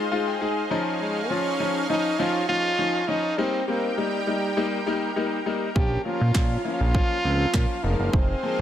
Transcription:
0.00 0.41 G#3 medium
0.00 5.72 D#4 medium
0.00 3.34 G#4 medium
0.00 0.69 C5 medium
0.00 0.67 F5 medium
0.00 downlifter medium
0.11 0.32 G#3 medium
0.11 0.32 D#4 medium
0.11 0.32 F4 medium
0.11 0.26 F5 medium
0.27 0.40 G5 medium
0.41 0.61 G#3 medium
0.41 0.62 D#4 medium
0.41 0.62 G#4 medium
0.41 0.69 G#5 medium
0.71 1.19 F3 medium
0.71 1.19 C#4 medium
0.71 1.19 D#4 loud
0.71 3.35 C#5 medium
0.71 3.35 F5 medium
0.71 0.98 A#5 medium
1.01 1.32 G#3 medium
1.30 1.51 F3 medium
1.30 1.51 C#4 medium
1.30 1.89 C#4 loud
1.30 1.51 F4 medium
1.60 1.80 F3 medium
1.60 1.80 C#4 medium
1.60 1.81 D#4 medium
1.89 2.10 F3 medium
1.89 2.10 C#4 medium
1.89 2.21 D#4 loud
1.89 2.10 D#4 medium
2.19 2.40 F3 medium
2.19 2.40 C#4 medium
2.19 2.40 D#4 loud
2.19 2.48 F4 loud
2.49 2.69 F3 medium
2.49 2.70 C#4 medium
2.49 2.70 D#4 medium
2.49 3.10 F4 loud
2.78 2.99 F3 medium
2.78 2.99 C#4 medium
2.78 2.99 D#4 medium
3.08 3.29 F3 medium
3.08 3.29 C#4 medium
3.08 3.40 D#4 loud
3.08 3.29 D#4 medium
3.38 3.58 G3 medium
3.38 3.59 A#3 medium
3.38 3.67 C4 loud
3.38 3.59 D#4 loud
3.38 5.73 G4 medium
3.38 7.80 A#4 medium
3.38 5.73 G5 medium
3.68 3.88 G3 medium
3.68 3.88 A#3 medium
3.68 3.99 A#3 medium
3.68 3.88 C4 medium
3.97 4.18 G3 medium
3.97 5.16 G3 medium
3.97 4.18 A#3 medium
3.97 4.18 D#4 medium
4.27 4.47 G3 medium
4.27 4.48 A#3 medium
4.27 4.48 D#4 medium
4.57 4.77 G3 medium
4.57 4.77 A#3 medium
4.57 4.77 D#4 loud
4.86 5.07 G3 medium
4.86 5.07 A#3 medium
4.86 5.07 D#4 loud
5.16 5.37 G3 medium
5.16 5.37 A#3 medium
5.16 5.37 D#4 medium
5.46 5.66 G3 medium
5.46 5.66 A#3 medium
5.46 5.67 D#4 medium
5.75 5.98 A#1 loud
5.75 5.96 F3 medium
5.75 5.96 A#3 medium
5.75 7.82 C#4 medium
5.75 5.96 C#4 loud
5.75 7.82 F4 medium
5.75 6.03 G4 loud
5.75 8.61 F5 medium
5.75 kick loud
6.05 6.26 F3 medium
6.05 6.26 A#3 medium
6.05 6.26 C#4 medium
6.05 6.61 F4 loud
6.21 6.32 A#2 medium
6.34 6.57 A#2 loud
6.34 6.55 F3 medium
6.34 6.56 A#3 medium
6.34 6.56 C#4 medium
6.34 kick loud
6.34 snare medium
6.34 clap loud
6.65 6.85 F3 medium
6.65 6.85 A#3 medium
6.65 6.85 C#4 medium
6.65 7.85 F4 loud
6.81 7.03 A#1 loud
6.94 7.15 F3 medium
6.94 7.15 A#3 medium
6.94 7.15 C#4 loud
6.94 kick loud
7.24 7.46 C#2 medium
7.24 7.45 F3 medium
7.24 7.45 A#3 medium
7.24 7.45 C4 medium
7.53 7.66 A#2 loud
7.53 7.74 F3 medium
7.53 7.75 A#3 medium
7.53 7.75 C#4 medium
7.53 kick loud
7.53 snare medium
7.53 clap loud
7.83 7.95 F1 loud
7.83 8.32 F3 medium
7.83 8.32 G#3 medium
7.83 8.15 A#3 medium
7.83 8.61 D#4 medium
7.83 8.32 D#4 medium
7.83 8.61 G#4 medium
7.83 8.61 C5 medium
7.99 8.10 F#1 medium
8.13 8.35 F1 loud
8.13 8.61 C4 medium
8.13 kick loud
8.43 8.61 F3 medium
8.43 8.61 G#3 medium
8.43 8.61 A#3 medium

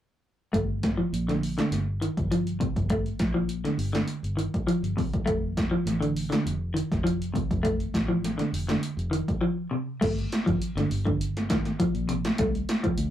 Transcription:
0.53 1.00 G1 medium
0.53 0.78 A3 medium
0.53 kick medium
0.53 closed hi-hat medium
0.83 kick medium
0.83 snare medium
0.83 closed hi-hat soft
0.97 1.23 F3 medium
1.13 1.59 A#1 medium
1.13 closed hi-hat medium
1.28 1.53 D3 medium
1.28 snare soft
1.28 closed hi-hat soft
1.43 open hi-hat medium
1.58 1.83 D3 medium
1.58 snare medium
1.58 closed hi-hat soft
1.71 2.07 G1 medium
1.71 snare soft
1.71 closed hi-hat medium
2.01 2.26 D#3 medium
2.01 closed hi-hat soft
2.17 2.64 G1 medium
2.17 kick medium
2.17 closed hi-hat soft
2.31 2.56 F3 medium
2.31 closed hi-hat medium
2.47 closed hi-hat soft
2.60 2.85 C3 medium
2.60 kick medium
2.60 closed hi-hat soft
2.76 3.10 G1 medium
2.76 kick medium
2.76 closed hi-hat soft
2.90 3.15 A3 medium
2.90 kick medium
2.90 closed hi-hat medium
3.06 closed hi-hat soft
3.19 3.66 A#1 medium
3.19 kick medium
3.19 snare medium
3.19 closed hi-hat soft
3.34 3.60 F3 medium
3.49 closed hi-hat medium
3.64 3.90 D3 medium
3.64 snare soft
3.64 closed hi-hat soft
3.78 4.02 G1 medium
3.78 open hi-hat medium
3.93 4.19 D3 medium
3.93 snare medium
4.08 closed hi-hat medium
4.23 4.47 G1 medium
4.23 closed hi-hat soft
4.37 4.62 D#3 medium
4.37 closed hi-hat soft
4.54 kick medium
4.54 closed hi-hat soft
4.67 4.92 F3 medium
4.67 closed hi-hat medium
4.82 4.94 G1 medium
4.82 closed hi-hat soft
4.97 5.22 C3 medium
4.97 kick medium
4.97 open hi-hat medium
5.13 muted fingered electric bass stroke soft
5.13 kick medium
5.13 closed hi-hat soft
5.26 5.74 F1 medium
5.26 5.51 A3 medium
5.26 kick medium
5.26 closed hi-hat medium
5.57 kick medium
5.57 snare medium
5.57 closed hi-hat soft
5.71 5.97 F3 medium
5.86 6.33 A1 medium
5.86 snare soft
5.86 closed hi-hat medium
6.01 6.26 D3 medium
6.01 closed hi-hat soft
6.17 open hi-hat medium
6.30 6.56 D3 medium
6.30 snare medium
6.30 closed hi-hat soft
6.46 6.81 F1 medium
6.46 closed hi-hat medium
6.74 7.00 D#3 medium
6.74 closed hi-hat medium
6.92 7.38 F1 medium
6.92 kick medium
6.92 snare soft
6.92 closed hi-hat soft
7.04 7.29 F3 medium
7.04 closed hi-hat medium
7.22 closed hi-hat soft
7.34 7.59 C3 medium
7.34 kick medium
7.34 closed hi-hat medium
7.51 7.85 F1 medium
7.51 kick medium
7.51 closed hi-hat soft
7.63 7.88 A3 medium
7.63 kick medium
7.63 closed hi-hat medium
7.80 closed hi-hat soft
7.94 8.40 A1 medium
7.94 kick medium
7.94 snare medium
7.94 closed hi-hat soft
8.08 8.34 F3 medium
8.24 snare soft
8.24 closed hi-hat medium
8.38 8.63 D3 medium
8.38 snare soft
8.38 closed hi-hat soft
8.52 8.76 F1 medium
8.52 open hi-hat medium
8.69 8.93 D3 medium
8.69 snare medium
8.83 closed hi-hat medium
8.97 9.21 F1 medium
8.97 closed hi-hat soft
9.11 9.37 D#3 medium
9.11 closed hi-hat soft
9.28 kick medium
9.28 closed hi-hat soft
9.41 9.66 F3 medium
9.71 9.96 C3 medium
10.01 10.25 G1 medium
10.01 10.26 A3 medium
10.01 kick medium
10.01 snare soft
10.01 closed hi-hat medium
10.01 crash medium
10.18 closed hi-hat soft
10.32 snare medium
10.32 closed hi-hat medium
10.46 10.58 G1 medium
10.46 10.71 F3 medium
10.46 kick medium
10.46 closed hi-hat soft
10.60 muted fingered electric bass stroke soft
10.60 closed hi-hat medium
10.75 10.87 G1 medium
10.75 11.02 D3 medium
10.75 snare soft
10.75 closed hi-hat soft
10.90 11.72 G1 medium
10.90 open hi-hat medium
11.05 11.30 D3 medium
11.05 kick medium
11.21 closed hi-hat medium
11.37 snare soft
11.37 closed hi-hat soft
11.50 11.75 D#3 medium
11.50 kick medium
11.50 snare medium
11.50 closed hi-hat medium
11.65 snare soft
11.65 closed hi-hat soft
11.80 12.04 F3 medium
11.80 kick medium
11.80 closed hi-hat medium
11.94 12.29 A#1 medium
11.94 closed hi-hat soft
12.09 12.34 C3 medium
12.09 closed hi-hat medium
12.25 snare medium
12.25 closed hi-hat soft
12.38 12.62 C2 medium
12.38 12.64 A3 medium
12.38 kick medium
12.38 snare soft
12.38 closed hi-hat medium
12.55 closed hi-hat soft
12.69 snare medium
12.69 closed hi-hat medium
12.84 13.09 F3 medium
12.84 kick medium
12.84 closed hi-hat soft
12.97 13.10 D2 medium
12.97 closed hi-hat medium

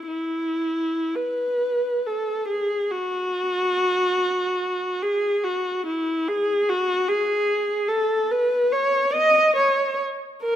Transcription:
0.07 1.13 E4 medium
1.15 2.04 B4 medium
2.06 2.48 A4 soft
2.47 2.91 G#4 medium
2.91 5.03 F#4 medium
5.02 5.45 G#4 medium
5.43 5.86 F#4 medium
5.86 6.28 E4 medium
6.28 6.69 G#4 medium
6.69 7.09 F#4 medium
7.08 7.88 G#4 medium
7.88 8.30 A4 medium
8.30 8.73 B4 medium
8.72 9.14 C#5 medium
9.13 9.55 D#5 medium
9.56 9.99 C#5 medium
10.42 10.56 A#4 medium

